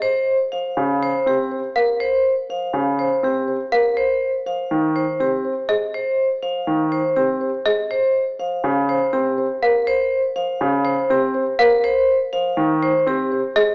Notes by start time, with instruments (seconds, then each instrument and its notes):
Already playing: marimba G#4, xylophone D#5
0.02 vibraphone C5
0.52 marimba C5, vibraphone F5
0.77 grand piano C#3
1.03 vibraphone C5
1.26 grand piano C4, vibraphone G4
1.52 marimba C5
1.76 marimba A#4, xylophone F5
2.00 vibraphone C5
2.50 marimba C5, vibraphone F5
2.73 grand piano C#3
2.99 vibraphone C5
3.23 grand piano C4, vibraphone G4
3.48 marimba C5
3.72 marimba A#4, xylophone F5
3.97 vibraphone C5
4.46 marimba C5, vibraphone F5
4.71 grand piano D#3
4.96 vibraphone C5
5.20 grand piano C4, vibraphone G4
5.45 marimba C5
5.69 marimba G#4, xylophone D#5
5.94 vibraphone C5
6.43 marimba C5, vibraphone F5
6.67 grand piano D#3
6.92 vibraphone C5
7.16 grand piano C4, vibraphone G4
7.41 marimba C5
7.66 marimba G#4, xylophone D#5
7.91 vibraphone C5
8.39 marimba C5, vibraphone F5
8.64 grand piano C#3
8.89 vibraphone C5
9.13 grand piano C4, vibraphone G4
9.38 marimba C5
9.63 marimba A#4, xylophone F5
9.87 vibraphone C5
10.36 marimba C5, vibraphone F5
10.61 grand piano C#3
10.85 vibraphone C5
11.10 grand piano C4, vibraphone G4
11.34 marimba C5
11.59 marimba A#4, xylophone F5
11.84 vibraphone C5
12.33 marimba C5, vibraphone F5
12.57 grand piano D#3
12.83 vibraphone C5
13.07 grand piano C4, vibraphone G4
13.32 marimba C5
13.56 marimba G#4, xylophone D#5